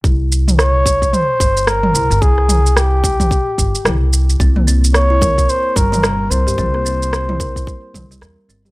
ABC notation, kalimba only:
X:1
M:4/4
L:1/16
Q:"Swing 16ths" 1/4=110
K:none
V:1 name="Kalimba"
z16 | z16 | C _B, C z2 E _B4 G, G, B z C G | C _B, C z2 E _B4 G, G, B z C G |]